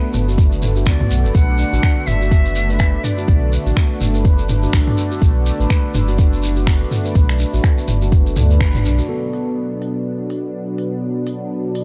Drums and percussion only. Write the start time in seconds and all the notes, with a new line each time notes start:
0.14 mid tom, shekere
0.29 shekere
0.38 kick, shekere
0.52 shekere
0.62 mid tom, shekere
0.76 shekere
0.86 finger snap, kick, shekere
1.00 mid tom
1.11 shekere
1.25 shekere
1.35 kick, shekere
1.58 shekere
1.73 shekere
1.83 finger snap, kick, shekere
2.07 mid tom, shekere
2.21 shekere
2.31 kick, shekere
2.45 shekere
2.55 shekere
2.70 shekere
2.79 finger snap, kick, shekere
3.04 mid tom, shekere
3.18 shekere
3.28 kick, shekere
3.53 shekere
3.66 shekere
3.76 finger snap, kick, shekere
4.01 mid tom, shekere
4.14 shekere
4.25 kick, shekere
4.39 shekere
4.49 mid tom, shekere
4.63 shekere
4.73 finger snap, kick, shekere
4.88 mid tom
4.98 shekere
5.11 shekere
5.22 kick, shekere
5.46 shekere
5.61 shekere
5.70 finger snap, kick, shekere
5.94 mid tom, shekere
6.08 shekere
6.18 kick, shekere
6.33 shekere
6.43 shekere
6.56 shekere
6.67 finger snap, kick, shekere
6.91 mid tom, shekere
7.05 shekere
7.15 kick, shekere
7.29 finger snap, shekere
7.39 shekere
7.54 shekere
7.64 finger snap, kick, shekere
7.78 shekere
7.88 mid tom, shekere
8.02 shekere
8.12 kick, shekere
8.26 shekere
8.36 mid tom, shekere
8.51 shekere
8.61 finger snap, kick, shekere
8.75 mid tom, shekere
8.85 shekere
8.98 shekere
9.33 open hi-hat
9.82 open hi-hat
10.30 open hi-hat
10.78 open hi-hat
11.27 open hi-hat
11.75 open hi-hat